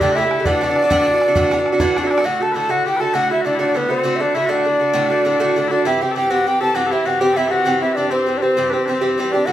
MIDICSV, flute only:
0, 0, Header, 1, 2, 480
1, 0, Start_track
1, 0, Tempo, 300300
1, 726, Time_signature, 12, 3, 24, 8
1, 15225, End_track
2, 0, Start_track
2, 0, Title_t, "Flute"
2, 0, Program_c, 0, 73
2, 0, Note_on_c, 0, 74, 94
2, 245, Note_on_c, 0, 76, 87
2, 269, Note_off_c, 0, 74, 0
2, 714, Note_on_c, 0, 74, 106
2, 738, Note_off_c, 0, 76, 0
2, 2911, Note_off_c, 0, 74, 0
2, 3384, Note_on_c, 0, 74, 101
2, 3605, Note_on_c, 0, 78, 104
2, 3629, Note_off_c, 0, 74, 0
2, 3877, Note_on_c, 0, 81, 84
2, 3901, Note_off_c, 0, 78, 0
2, 4090, Note_off_c, 0, 81, 0
2, 4100, Note_on_c, 0, 81, 94
2, 4330, Note_on_c, 0, 78, 91
2, 4354, Note_off_c, 0, 81, 0
2, 4572, Note_off_c, 0, 78, 0
2, 4582, Note_on_c, 0, 79, 102
2, 4812, Note_on_c, 0, 81, 100
2, 4836, Note_off_c, 0, 79, 0
2, 5035, Note_on_c, 0, 78, 104
2, 5059, Note_off_c, 0, 81, 0
2, 5292, Note_off_c, 0, 78, 0
2, 5299, Note_on_c, 0, 76, 89
2, 5509, Note_off_c, 0, 76, 0
2, 5517, Note_on_c, 0, 74, 81
2, 5733, Note_off_c, 0, 74, 0
2, 5756, Note_on_c, 0, 74, 90
2, 6027, Note_on_c, 0, 71, 77
2, 6051, Note_off_c, 0, 74, 0
2, 6242, Note_on_c, 0, 72, 88
2, 6266, Note_off_c, 0, 71, 0
2, 6645, Note_on_c, 0, 76, 72
2, 6669, Note_off_c, 0, 72, 0
2, 6727, Note_on_c, 0, 74, 87
2, 6751, Note_off_c, 0, 76, 0
2, 6955, Note_on_c, 0, 76, 92
2, 6979, Note_off_c, 0, 74, 0
2, 7184, Note_on_c, 0, 74, 94
2, 7208, Note_off_c, 0, 76, 0
2, 9118, Note_off_c, 0, 74, 0
2, 9134, Note_on_c, 0, 74, 90
2, 9343, Note_off_c, 0, 74, 0
2, 9362, Note_on_c, 0, 76, 92
2, 9630, Note_on_c, 0, 79, 82
2, 9654, Note_off_c, 0, 76, 0
2, 9835, Note_off_c, 0, 79, 0
2, 9844, Note_on_c, 0, 79, 98
2, 10086, Note_on_c, 0, 78, 110
2, 10110, Note_off_c, 0, 79, 0
2, 10341, Note_on_c, 0, 79, 96
2, 10365, Note_off_c, 0, 78, 0
2, 10568, Note_off_c, 0, 79, 0
2, 10576, Note_on_c, 0, 81, 103
2, 10799, Note_on_c, 0, 78, 93
2, 10823, Note_off_c, 0, 81, 0
2, 11067, Note_on_c, 0, 76, 85
2, 11091, Note_off_c, 0, 78, 0
2, 11297, Note_on_c, 0, 78, 95
2, 11321, Note_off_c, 0, 76, 0
2, 11526, Note_on_c, 0, 79, 106
2, 11550, Note_off_c, 0, 78, 0
2, 11773, Note_on_c, 0, 76, 94
2, 11797, Note_off_c, 0, 79, 0
2, 12005, Note_on_c, 0, 78, 103
2, 12029, Note_off_c, 0, 76, 0
2, 12476, Note_off_c, 0, 78, 0
2, 12486, Note_on_c, 0, 76, 84
2, 12714, Note_on_c, 0, 74, 93
2, 12738, Note_off_c, 0, 76, 0
2, 12937, Note_off_c, 0, 74, 0
2, 12947, Note_on_c, 0, 72, 92
2, 13387, Note_on_c, 0, 74, 50
2, 13411, Note_off_c, 0, 72, 0
2, 13453, Note_on_c, 0, 72, 95
2, 13477, Note_off_c, 0, 74, 0
2, 13911, Note_on_c, 0, 71, 55
2, 13935, Note_off_c, 0, 72, 0
2, 13974, Note_on_c, 0, 72, 79
2, 13998, Note_off_c, 0, 71, 0
2, 14462, Note_off_c, 0, 72, 0
2, 14880, Note_on_c, 0, 74, 88
2, 15122, Note_on_c, 0, 78, 100
2, 15146, Note_off_c, 0, 74, 0
2, 15225, Note_off_c, 0, 78, 0
2, 15225, End_track
0, 0, End_of_file